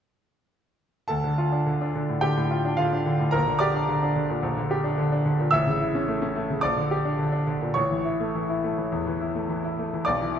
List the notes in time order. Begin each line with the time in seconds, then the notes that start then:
1.08 D2 A4 A5
1.24 D3
1.38 F4
1.52 D4
1.66 D3
1.81 D4
1.95 D3
2.09 A2
2.21 D3 G4 G5
2.37 A2
2.51 F4
2.65 D4
2.77 D3 F4 F5
2.93 D4
3.06 D3
3.19 A2
3.31 A#1 A#4 A#5
3.47 D3
3.59 G4 D5 D6
3.74 D4
3.89 D3
4.03 D4
4.16 D3
4.29 A#2
4.43 A#1
4.57 D3
4.71 G4
4.84 D4
4.98 D3
5.12 D4
5.26 D3
5.40 A#2
5.51 A1 E5 E6
5.67 C#3
5.81 E4
5.95 C#4
6.08 A3
6.22 C#4
6.36 A3
6.50 C#3
6.61 A#1 D5 D6
6.77 D3
6.91 G4
7.05 D4
7.19 D3
7.32 D4
7.47 D3
7.61 A#2
7.74 A1 C#5 C#6
7.91 E3
8.05 E4
8.20 A3
8.35 E3
8.49 E4
8.64 A3
8.78 E3
8.92 E2
9.07 E3
9.21 E4
9.35 A3
9.49 E3
9.64 E4
9.79 A3
9.93 E3
10.05 B1 D5 D6
10.22 E3
10.36 E4